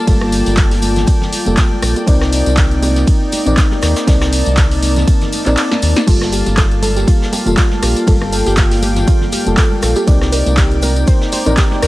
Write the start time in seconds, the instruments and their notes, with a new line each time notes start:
Already playing: analog synth pad A#3 D5 A5, ambient pad A#3 F4 A5
0.06 analog synth bass G1, fm electric piano G3 A#3 F4 A4, analog synth pad G5, kick, closed hi-hat, open hi-hat, ride, tambourine, high conga
0.21 cross-stick, high bongo
0.32 open hi-hat, tambourine, shaker
0.46 analog synth bass G1, closed hi-hat, tambourine, high conga
0.57 kick, snare, clap, closed hi-hat, ride, tambourine, shaker
0.71 snare, open hi-hat, high bongo
0.82 open hi-hat, tambourine, high conga, shaker
0.96 snare, closed hi-hat, tambourine, low conga
1.07 kick, closed hi-hat, ride, tambourine, high bongo, shaker
1.21 snare, low conga
1.32 open hi-hat, tambourine, high conga, shaker
1.45 analog synth bass F1, fm electric piano G3 A#3 F4 A4, closed hi-hat, tambourine
1.57 kick, snare, clap, closed hi-hat, ride, high bongo, shaker
1.71 high conga
1.82 analog synth bass A#1, cross-stick, snare, open hi-hat, tambourine, shaker
1.96 closed hi-hat, tambourine, high bongo
2.06 analog synth bass C2, analog synth pad A#3 D#4, fm electric piano C4 D#4 A#4 D5, ambient pad D#4, kick, closed hi-hat, ride, tambourine, high conga, shaker
2.21 cross-stick, snare
2.33 open hi-hat, tambourine, shaker
2.46 analog synth bass C2, closed hi-hat, tambourine, high bongo, high conga
2.56 ambient pad D6, kick, snare, clap, closed hi-hat, ride, shaker
2.71 closed hi-hat
2.82 open hi-hat, tambourine, high bongo, high conga, shaker
2.96 snare, closed hi-hat, tambourine
3.07 kick, closed hi-hat, ride, tambourine, shaker
3.32 open hi-hat, tambourine, high bongo, high conga, shaker
3.45 analog synth bass A#1, fm electric piano C4 D#4 A#4 D5, closed hi-hat, tambourine, low conga
3.57 ambient pad A#4, kick, snare, clap, closed hi-hat, ride, tambourine, shaker
3.71 snare, high bongo, high conga
3.82 analog synth bass D#2, cross-stick, snare, open hi-hat, tambourine, shaker
3.96 snare, closed hi-hat, tambourine, shaker
4.06 analog synth bass C2, fm electric piano C4 D#4 A#4 D5, analog synth pad A5, kick, snare, closed hi-hat, ride, tambourine, high conga, shaker
4.21 cross-stick, snare, high bongo, shaker
4.33 open hi-hat, tambourine, shaker
4.46 analog synth bass C2, closed hi-hat, tambourine, high conga
4.57 kick, snare, clap, closed hi-hat, ride, tambourine, high bongo, shaker
4.71 snare, open hi-hat
4.83 open hi-hat, tambourine, high conga, shaker
4.96 snare, closed hi-hat, tambourine, low conga
5.07 kick, closed hi-hat, ride, tambourine, high bongo, shaker
5.21 snare, closed hi-hat, low conga
5.32 open hi-hat, tambourine, high conga, shaker
5.45 analog synth bass A#1, fm electric piano C4 D#4 A#4 D5, clap, closed hi-hat, tambourine, high bongo
5.57 snare, clap, closed hi-hat, ride, tambourine, shaker
5.71 snare, high conga
5.82 analog synth bass D#2, open hi-hat, tambourine
5.96 snare, closed hi-hat, tambourine, high bongo
6.07 analog synth bass G1, fm electric piano G3 A#3 F4 A4, synth pluck F4, ambient pad F4, analog synth pad D5 F5, kick, closed hi-hat, ride, tambourine, crash, high bongo, high conga, shaker
6.21 ambient pad A#3, cross-stick, snare
6.32 synth pluck G4, open hi-hat, tambourine, shaker
6.46 analog synth bass G1, ambient pad A5, closed hi-hat, tambourine, high bongo, high conga
6.57 synth pluck A4, kick, snare, clap, closed hi-hat, ride, tambourine, shaker
6.71 closed hi-hat
6.82 synth pluck A4, open hi-hat, tambourine, high conga, shaker
6.96 synth pluck G4, snare, closed hi-hat, tambourine, high bongo
7.08 synth pluck F4, kick, closed hi-hat, ride, shaker
7.22 snare
7.32 synth pluck G4, open hi-hat, tambourine, high bongo, high conga, shaker
7.45 analog synth bass F1, fm electric piano G3 A#3 F4 A4, closed hi-hat, tambourine, low conga
7.57 synth pluck F4, kick, snare, clap, closed hi-hat, ride, tambourine, shaker
7.71 snare, high conga
7.82 analog synth bass A#1, synth pluck G4, cross-stick, open hi-hat, tambourine, high bongo, shaker
7.96 closed hi-hat, tambourine
8.07 analog synth bass G1, fm electric piano G3 A#3 F4 A4, synth pluck A4, analog synth pad G5, kick, closed hi-hat, open hi-hat, ride, tambourine, high conga
8.21 cross-stick, high bongo
8.32 synth pluck A4, open hi-hat, tambourine, shaker
8.46 analog synth bass G1, synth pluck G4, closed hi-hat, tambourine, high conga
8.57 synth pluck F4, kick, snare, clap, closed hi-hat, ride, tambourine, shaker
8.71 snare, open hi-hat, high bongo
8.82 synth pluck G4, open hi-hat, tambourine, high conga, shaker
8.96 snare, closed hi-hat, tambourine, low conga
9.07 synth pluck F4, kick, closed hi-hat, ride, high bongo, shaker
9.21 snare, low conga
9.32 synth pluck G4, open hi-hat, tambourine, high conga, shaker
9.45 analog synth bass F1, fm electric piano G3 A#3 F4 A4, closed hi-hat, tambourine
9.57 synth pluck A4, kick, snare, clap, closed hi-hat, ride, tambourine, high bongo, shaker
9.71 high conga
9.82 analog synth bass A#1, synth pluck A4, cross-stick, snare, open hi-hat, tambourine, shaker
9.96 synth pluck G4, closed hi-hat, tambourine, high bongo
10.06 analog synth bass C2, fm electric piano C4 D#4 A#4 D5, ambient pad D#4, analog synth pad D#4 G5, synth pluck G4, kick, closed hi-hat, ride, tambourine, high conga, shaker
10.21 cross-stick, snare
10.32 synth pluck A#4, open hi-hat, tambourine, shaker
10.46 analog synth bass C2, closed hi-hat, tambourine, high bongo, high conga
10.57 synth pluck G4, ambient pad A#5, kick, snare, clap, closed hi-hat, ride, tambourine, shaker
10.71 ambient pad D6, closed hi-hat
10.82 synth pluck A#4, open hi-hat, tambourine, high bongo, high conga, shaker
10.96 closed hi-hat, tambourine
11.07 synth pluck C5, kick, closed hi-hat, ride, tambourine, shaker
11.21 snare
11.32 synth pluck C5, open hi-hat, tambourine, high bongo, high conga, shaker
11.45 analog synth bass A#1, fm electric piano C4 D#4 A#4 D5, synth pluck A#4, closed hi-hat, tambourine, low conga
11.57 synth pluck G4, kick, snare, clap, closed hi-hat, ride, tambourine, shaker
11.71 snare, high bongo, high conga
11.82 analog synth bass D#2, synth pluck A#4, cross-stick, snare, open hi-hat, tambourine, shaker